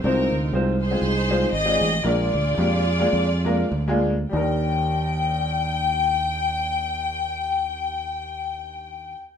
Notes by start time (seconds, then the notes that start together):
0.04 C2 C3 G#3 C4 D#4 F4 A#4 C5
0.31 D2
0.52 C2 G#3 C4 D#4 F4 C5
0.81 D#4 G#4 C5
0.91 G#3 C4 D#4 F4 G#4
1.02 C2
1.29 G#3 C4 D#4 F4 C5
1.53 G#1 G#4 D#5
1.65 G#3 C4 D#4 F4 D5
1.81 A1
2.03 A#1 A#2 G#3 A#3 D4 F4 G#4 A#4 D5
2.34 D2
2.58 F2 G#3 A#3 D4 F4 G4
3.00 G#3 A#3 D4 F4 G#4
3.13 F2
3.45 G#3 A#3 D4 F4 A#4
3.71 D2
3.88 G#3 A#3 D4 F4 G#4
4.29 D#2 G3 D4 G5
4.34 D#4 A#4